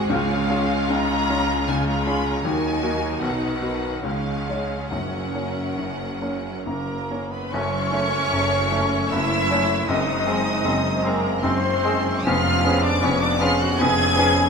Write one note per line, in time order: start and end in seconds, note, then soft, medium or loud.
0.00 0.12 G#1 medium
0.00 0.12 G#2 medium
0.00 2.41 G#3 medium
0.00 0.12 C4 medium
0.00 0.12 F#4 medium
0.00 0.12 G#4 medium
0.00 2.41 G#4 medium
0.09 2.41 C#2 medium
0.09 0.48 C#2 medium
0.09 0.48 C#3 medium
0.09 1.25 C#3 medium
0.09 1.65 G#3 medium
0.09 1.67 C#4 medium
0.09 2.41 F4 medium
0.09 2.41 C#5 medium
0.09 0.90 F5 loud
0.50 0.86 C#4 medium
0.50 0.87 F4 medium
0.50 0.87 G#4 medium
0.90 1.28 C#2 medium
0.90 1.28 C#3 medium
0.90 1.68 A#5 loud
1.30 1.64 C#4 medium
1.30 1.64 F4 medium
1.30 1.65 G#4 medium
1.68 2.05 C#2 medium
1.68 2.06 C#3 medium
1.68 2.44 G#3 medium
1.68 2.44 C#4 medium
1.68 1.87 G#5 medium
1.86 2.06 A#5 medium
2.05 2.41 C#4 medium
2.05 2.41 F4 medium
2.05 2.42 G#4 medium
2.05 2.25 B5 loud
2.26 2.45 A#5 medium
2.43 2.82 D#2 medium
2.43 3.23 D#2 medium
2.43 2.82 D#3 medium
2.43 4.05 D#3 medium
2.43 3.21 F#3 medium
2.43 3.21 D#4 medium
2.43 4.05 D#4 medium
2.43 4.01 F#4 medium
2.43 3.23 A#4 medium
2.43 3.22 G#5 loud
2.83 3.18 A#3 soft
2.83 3.19 D#4 medium
2.83 3.19 F#4 medium
3.21 3.61 B1 medium
3.21 4.06 B1 medium
3.21 3.61 B2 medium
3.21 4.05 B2 medium
3.21 4.03 F#3 medium
3.21 4.03 D#4 medium
3.21 4.05 B4 medium
3.21 4.05 F#5 medium
3.62 4.00 B3 soft
3.62 4.00 D#4 soft
3.62 4.01 F#4 medium
4.03 4.46 C#2 medium
4.03 4.90 C#2 soft
4.03 4.46 C#3 soft
4.03 4.90 C#3 medium
4.03 4.73 G#3 medium
4.03 4.91 G#3 medium
4.03 4.73 C#4 soft
4.03 6.62 C#4 soft
4.03 6.66 C#4 medium
4.03 4.89 G#4 soft
4.03 4.89 F5 medium
4.49 4.88 G#3 soft
4.49 4.88 C#4 soft
4.49 4.88 C#5 soft
4.90 7.32 F#1 medium
4.90 5.34 F#1 soft
4.90 6.18 F#2 medium
4.90 7.32 F#2 medium
4.90 5.34 F#2 medium
4.90 6.63 F#3 soft
4.90 7.15 A#3 medium
4.90 7.15 C#4 medium
4.90 6.65 A#4 soft
4.90 6.62 F#5 medium
5.34 5.74 A#3 soft
5.34 5.74 C#4 soft
5.34 5.74 C#5 soft
5.78 6.21 F#1 soft
5.78 6.21 F#2 soft
6.22 6.62 A#3 soft
6.22 6.62 C#4 soft
6.22 6.62 C#5 soft
6.65 7.09 F#1 soft
6.65 7.09 F#2 soft
6.65 7.33 A#3 medium
6.65 7.29 A#3 soft
6.65 7.28 A#4 medium
6.65 7.28 A#4 soft
6.65 7.28 A#5 medium
7.10 7.49 A#3 soft
7.10 7.49 C#4 soft
7.10 7.49 C#5 soft
7.32 7.54 B3 medium
7.32 7.53 B3 medium
7.32 7.53 B4 medium
7.32 7.53 B5 medium
7.52 8.23 F#1 medium
7.52 7.92 F#1 medium
7.52 8.23 F#2 medium
7.52 7.92 F#2 medium
7.52 9.84 A3 medium
7.52 7.69 A3 medium
7.52 9.84 C#4 medium
7.52 9.13 C#4 medium
7.52 9.11 C#4 medium
7.52 7.69 C#4 medium
7.52 9.10 C#5 medium
7.52 9.11 C#5 medium
7.52 9.11 C#6 loud
7.92 8.28 A3 soft
7.92 8.09 A3 soft
7.92 8.08 C#4 medium
7.92 8.28 C#4 soft
7.92 8.29 C#5 medium
8.31 9.01 F#1 medium
8.31 8.71 F#1 medium
8.31 9.02 F#2 medium
8.31 8.71 F#2 medium
8.31 8.49 A3 medium
8.31 8.47 C#4 medium
8.71 8.87 A3 medium
8.71 9.07 A3 medium
8.71 8.87 C#4 medium
8.71 9.07 C#4 medium
8.71 9.08 C#5 medium
9.10 9.79 F#1 medium
9.10 9.50 F#1 medium
9.10 9.80 F#2 medium
9.10 9.50 F#2 medium
9.10 9.27 A3 medium
9.10 9.26 C#4 medium
9.10 9.87 E4 medium
9.10 9.89 E4 medium
9.10 9.89 E5 loud
9.10 9.89 E5 medium
9.10 9.89 E6 loud
9.49 9.66 A3 medium
9.49 9.85 A3 medium
9.49 9.65 C#4 medium
9.49 9.86 C#4 medium
9.49 9.86 C#5 medium
9.88 10.56 F#1 medium
9.88 10.26 F#1 medium
9.88 10.26 F#2 medium
9.88 10.57 F#2 medium
9.88 12.22 G#3 medium
9.88 10.04 G#3 medium
9.88 10.04 C4 medium
9.88 12.22 C4 medium
9.88 11.05 D#4 medium
9.88 11.02 D#5 medium
9.88 11.04 D#6 medium
10.26 10.61 G#3 medium
10.26 10.43 G#3 medium
10.26 10.42 C4 medium
10.26 10.62 C4 medium
10.26 10.62 G#4 medium
10.65 11.34 F#1 medium
10.65 11.03 F#1 medium
10.65 11.03 F#2 medium
10.65 11.34 F#2 medium
10.65 10.81 G#3 medium
10.65 10.81 C4 medium
11.03 11.19 G#3 medium
11.03 11.40 G#3 medium
11.03 11.45 A#3 medium
11.03 11.43 A#3 medium
11.03 11.20 C4 medium
11.03 11.40 C4 medium
11.03 11.40 G#4 medium
11.03 11.43 A#4 medium
11.03 11.44 A#5 medium
11.42 12.16 F#1 medium
11.42 11.84 F#1 medium
11.42 11.83 F#2 medium
11.42 12.17 F#2 medium
11.42 11.59 G#3 medium
11.42 11.58 C4 medium
11.42 12.26 C4 medium
11.42 11.94 C5 medium
11.42 12.26 C5 medium
11.42 12.26 C6 medium
11.84 12.00 G#3 medium
11.84 12.23 G#3 medium
11.84 12.00 C4 medium
11.84 12.22 C4 medium
11.84 12.23 G#4 medium
12.23 12.94 F1 medium
12.23 12.65 F1 medium
12.23 12.94 F2 medium
12.23 12.64 F2 medium
12.23 14.49 B3 medium
12.23 12.42 B3 medium
12.23 14.49 C#4 medium
12.23 12.41 C#4 medium
12.23 12.83 F4 medium
12.23 12.86 F4 medium
12.23 12.82 F5 medium
12.23 12.83 F5 medium
12.23 12.84 F6 loud
12.64 12.80 B3 medium
12.64 13.00 B3 medium
12.64 12.80 C#4 medium
12.64 13.00 C#4 medium
12.64 13.00 G#4 medium
12.83 13.03 D4 medium
12.83 13.05 D4 medium
12.83 13.02 D5 medium
12.83 13.03 D5 medium
12.83 13.03 D6 loud
13.01 13.70 F1 medium
13.01 13.40 F1 medium
13.01 13.70 F2 medium
13.01 13.40 F2 medium
13.01 13.18 B3 medium
13.01 13.22 C#4 medium
13.01 13.19 C#4 medium
13.01 13.22 C#4 medium
13.01 13.21 C#5 medium
13.01 13.22 C#6 loud
13.21 13.42 D4 medium
13.21 13.41 D4 medium
13.21 13.40 D5 medium
13.21 13.41 D6 loud
13.39 13.56 B3 medium
13.39 13.76 B3 medium
13.39 13.55 C#4 medium
13.39 13.76 C#4 medium
13.39 13.60 F4 loud
13.39 13.61 F4 medium
13.39 13.76 G#4 medium
13.39 13.60 F5 medium
13.39 13.60 F6 medium
13.59 13.80 F#4 medium
13.59 13.79 F#4 medium
13.59 13.79 F#5 medium
13.59 13.80 F#6 medium
13.77 14.45 F1 medium
13.77 14.17 F1 medium
13.77 14.46 F2 medium
13.77 14.17 F2 medium
13.77 13.95 B3 medium
13.77 13.95 C#4 medium
13.77 14.28 G#4 loud
13.77 14.49 G#4 medium
13.77 14.49 G#5 medium
13.77 14.49 G#5 loud
13.77 14.49 G#6 loud
14.16 14.32 B3 medium
14.16 14.49 B3 medium
14.16 14.33 C#4 medium
14.16 14.49 C#4 medium
14.16 14.49 G#4 medium